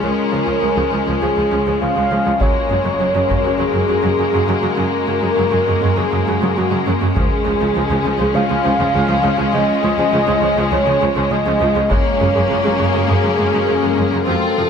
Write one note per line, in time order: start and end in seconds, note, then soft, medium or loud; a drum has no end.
0.00 0.09 C#2 soft
0.00 0.09 C#3 soft
0.00 0.09 F3 soft
0.00 2.37 G#3 soft
0.00 2.36 C#4 soft
0.00 2.37 C#4 soft
0.00 2.37 F4 medium
0.00 1.20 A#4 medium
0.00 2.37 C#5 soft
0.32 0.39 C#2 soft
0.32 0.39 C#3 soft
0.32 0.38 F3 soft
0.47 0.54 C#2 soft
0.47 0.53 C#3 soft
0.47 0.53 F3 soft
0.62 0.68 C#2 soft
0.62 0.68 C#3 soft
0.62 0.68 F3 soft
0.76 0.83 C#2 soft
0.76 0.83 C#3 soft
0.76 0.82 F3 soft
0.91 0.98 C#2 soft
0.91 0.98 C#3 soft
0.91 0.98 F3 soft
1.07 1.13 C#2 soft
1.07 1.13 C#3 soft
1.07 1.13 F3 soft
1.21 1.28 C#2 soft
1.21 1.27 C#3 soft
1.21 1.28 F3 soft
1.21 1.80 G#4 medium
1.37 1.43 C#2 soft
1.37 1.43 C#3 soft
1.37 1.43 F3 soft
1.51 1.58 C#2 soft
1.51 1.57 C#3 soft
1.51 1.57 F3 soft
1.67 1.73 C#2 soft
1.67 1.73 C#3 soft
1.67 1.73 F3 soft
1.82 1.88 C#2 soft
1.82 1.88 C#3 soft
1.82 1.88 F3 soft
1.82 2.43 F5 medium
1.96 2.02 C#2 soft
1.96 2.02 C#3 soft
1.96 2.03 F3 soft
2.12 2.17 C#2 soft
2.12 2.17 C#3 soft
2.12 2.17 F3 soft
2.26 2.32 C#2 soft
2.26 2.32 C#3 soft
2.26 2.32 F3 soft
2.40 2.47 F#2 soft
2.40 2.47 C#3 soft
2.40 2.47 F#3 soft
2.40 7.12 G#3 soft
2.40 7.13 G#3 soft
2.40 7.12 A#3 soft
2.40 7.12 C#4 soft
2.40 7.16 F#4 soft
2.40 7.16 A#4 soft
2.40 3.61 C#5 medium
2.40 taiko soft
2.70 2.76 F#2 soft
2.70 2.76 C#3 soft
2.70 2.76 F#3 soft
2.85 2.91 F#2 soft
2.85 2.91 C#3 soft
2.85 2.91 F#3 soft
3.00 3.06 F#2 soft
3.00 3.06 C#3 soft
3.00 3.06 F#3 soft
3.15 3.21 F#2 soft
3.15 3.21 C#3 soft
3.15 3.21 F#3 soft
3.29 3.36 F#2 soft
3.29 3.35 C#3 soft
3.29 3.36 F#3 soft
3.29 taiko soft
3.44 3.51 F#2 soft
3.44 3.50 C#3 soft
3.44 3.50 F#3 soft
3.59 3.66 F#2 soft
3.59 3.65 C#3 soft
3.59 3.65 F#3 soft
3.59 4.78 G#4 medium
3.74 3.80 F#2 soft
3.74 3.80 C#3 soft
3.74 3.80 F#3 soft
3.89 3.95 F#2 soft
3.89 3.95 C#3 soft
3.89 3.95 F#3 soft
4.03 4.10 F#2 soft
4.03 4.10 C#3 soft
4.03 4.10 F#3 soft
4.19 4.25 F#2 soft
4.19 4.25 C#3 soft
4.19 4.25 F#3 soft
4.34 4.40 F#2 soft
4.34 4.40 C#3 soft
4.34 4.40 F#3 soft
4.48 4.54 F#2 soft
4.48 4.55 C#3 soft
4.48 4.55 F#3 soft
4.63 4.69 F#2 soft
4.63 4.69 C#3 soft
4.63 4.69 F#3 soft
4.77 4.84 F#2 soft
4.77 4.84 C#3 soft
4.77 4.83 F#3 soft
4.77 5.99 A#4 medium
5.07 5.14 F#2 soft
5.07 5.13 C#3 soft
5.07 5.14 F#3 soft
5.22 5.29 F#2 soft
5.22 5.28 C#3 soft
5.22 5.28 F#3 soft
5.37 5.44 F#2 soft
5.37 5.44 C#3 soft
5.37 5.43 F#3 soft
5.52 5.59 F#2 soft
5.52 5.58 C#3 soft
5.52 5.58 F#3 soft
5.67 5.74 F#2 soft
5.67 5.74 C#3 soft
5.67 5.73 F#3 soft
5.82 5.89 F#2 soft
5.82 5.88 C#3 soft
5.82 5.88 F#3 soft
5.97 6.04 F#2 soft
5.97 6.03 C#3 soft
5.97 6.03 F#3 soft
5.97 6.58 G#4 medium
6.12 6.19 F#2 soft
6.12 6.18 C#3 soft
6.12 6.18 F#3 soft
6.27 6.33 F#2 medium
6.27 6.33 C#3 medium
6.27 6.33 F#3 medium
6.42 6.48 F#2 soft
6.42 6.48 C#3 soft
6.42 6.48 F#3 soft
6.57 6.63 F#2 soft
6.57 6.63 C#3 soft
6.57 6.63 F#3 soft
6.57 6.86 F#4 medium
6.71 6.78 F#2 soft
6.71 6.77 C#3 soft
6.71 6.77 F#3 soft
6.86 6.92 F#2 soft
6.86 6.93 C#3 soft
6.86 6.93 F#3 soft
7.02 7.07 F#2 soft
7.02 7.08 C#3 soft
7.02 7.08 F#3 soft
7.15 7.22 C#2 medium
7.15 7.22 C#3 medium
7.15 7.22 F3 medium
7.15 11.87 G#3 soft
7.15 11.87 G#3 medium
7.15 11.89 C#4 soft
7.15 11.87 C#4 medium
7.15 11.91 F4 soft
7.15 11.91 G#4 medium
7.15 8.36 G#4 medium
7.15 taiko soft
7.46 7.52 C#2 soft
7.46 7.52 C#3 soft
7.46 7.52 F3 soft
7.61 7.67 C#2 soft
7.61 7.67 C#3 soft
7.61 7.67 F3 soft
7.75 7.81 C#2 medium
7.75 7.82 C#3 soft
7.75 7.81 F3 soft
7.90 7.96 C#2 soft
7.90 7.97 C#3 soft
7.90 7.97 F3 soft
8.05 8.11 C#2 soft
8.05 8.11 C#3 soft
8.05 8.11 F3 soft
8.19 8.26 C#2 soft
8.19 8.26 C#3 medium
8.19 8.25 F3 soft
8.35 8.41 C#2 soft
8.35 8.41 C#3 soft
8.35 8.41 F3 soft
8.35 9.53 F5 medium
8.50 8.56 C#2 soft
8.50 8.56 C#3 soft
8.50 8.56 F3 soft
8.65 8.71 C#2 medium
8.65 8.71 C#3 medium
8.65 8.71 F3 medium
8.80 8.86 C#2 soft
8.80 8.86 C#3 soft
8.80 8.86 F3 soft
8.95 9.01 C#2 soft
8.95 9.01 C#3 soft
8.95 9.01 F3 soft
9.09 9.16 C#2 medium
9.09 9.15 C#3 medium
9.09 9.15 F3 soft
9.24 9.30 C#2 soft
9.24 9.30 C#3 medium
9.24 9.30 F3 soft
9.38 9.45 C#2 soft
9.38 9.45 C#3 soft
9.38 9.44 F3 soft
9.53 9.60 C#2 medium
9.53 9.60 C#3 medium
9.53 9.59 F3 medium
9.53 10.74 D#5 medium
9.83 9.90 C#2 soft
9.83 9.89 C#3 soft
9.83 9.89 F3 soft
9.98 10.05 C#2 soft
9.98 10.04 C#3 soft
9.98 10.04 F3 soft
10.13 10.20 C#2 medium
10.13 10.19 C#3 medium
10.13 10.19 F3 medium
10.28 10.34 C#2 soft
10.28 10.34 C#3 soft
10.28 10.34 F3 soft
10.42 10.49 C#2 soft
10.42 10.48 C#3 soft
10.42 10.48 F3 soft
10.58 10.64 C#2 medium
10.58 10.64 C#3 medium
10.58 10.64 F3 medium
10.72 10.78 C#2 soft
10.72 10.78 C#3 soft
10.72 10.78 F3 soft
10.72 11.33 C#5 medium
10.87 10.93 C#2 soft
10.87 10.93 C#3 soft
10.87 10.93 F3 soft
11.02 11.08 C#2 medium
11.02 11.08 C#3 medium
11.02 11.08 F3 medium
11.16 11.23 C#2 soft
11.16 11.22 C#3 soft
11.16 11.23 F3 soft
11.31 11.38 C#2 soft
11.31 11.37 C#3 soft
11.31 11.37 F3 soft
11.31 11.92 D#5 medium
11.46 11.53 C#2 medium
11.46 11.52 C#3 medium
11.46 11.52 F3 medium
11.61 11.67 C#2 soft
11.61 11.67 C#3 soft
11.61 11.67 F3 soft
11.76 11.82 C#2 soft
11.76 11.82 C#3 soft
11.76 11.82 F3 medium
11.90 11.97 F#2 medium
11.90 11.96 C#3 medium
11.90 11.96 G#3 medium
11.90 14.25 G#3 medium
11.90 14.24 A#3 medium
11.90 14.24 C#4 medium
11.90 14.25 C#4 medium
11.90 14.29 F#4 medium
11.90 14.29 A#4 medium
11.90 13.09 C#5 medium
11.90 taiko soft
12.20 12.27 F#2 soft
12.20 12.26 C#3 soft
12.20 12.27 G#3 soft
12.35 12.42 F#2 soft
12.35 12.42 C#3 soft
12.35 12.41 G#3 soft
12.50 12.57 F#2 medium
12.50 12.56 C#3 medium
12.50 12.56 G#3 medium
12.64 12.72 F#2 soft
12.64 12.71 C#3 soft
12.64 12.71 G#3 soft
12.79 12.87 F#2 soft
12.79 12.85 C#3 soft
12.79 12.85 G#3 soft
12.94 13.01 F#2 medium
12.94 13.00 C#3 soft
12.94 13.00 G#3 soft
13.08 13.16 F#2 soft
13.08 13.15 C#3 soft
13.08 13.15 G#3 soft
13.08 14.26 G#4 medium
13.23 13.32 F#2 soft
13.23 13.29 C#3 soft
13.23 13.30 G#3 soft
13.38 13.46 F#2 medium
13.38 13.44 C#3 soft
13.38 13.45 G#3 soft
13.53 13.61 F#2 soft
13.53 13.60 C#3 soft
13.53 13.60 G#3 soft
13.67 13.76 F#2 soft
13.67 13.73 C#3 soft
13.67 13.74 G#3 soft
13.82 13.91 F#2 soft
13.82 13.89 C#3 soft
13.82 13.89 G#3 soft
13.97 14.05 F#2 soft
13.97 14.03 C#3 soft
13.97 14.04 G#3 soft
14.13 14.20 F#2 soft
14.13 14.19 C#3 soft
14.13 14.19 G#3 soft
14.27 14.35 F2 soft
14.27 14.33 C3 medium
14.27 14.34 F3 medium
14.27 14.70 C4 soft
14.27 14.70 F4 soft
14.27 14.70 A4 medium
14.58 14.64 F2 soft
14.58 14.64 C3 soft
14.58 14.64 F3 soft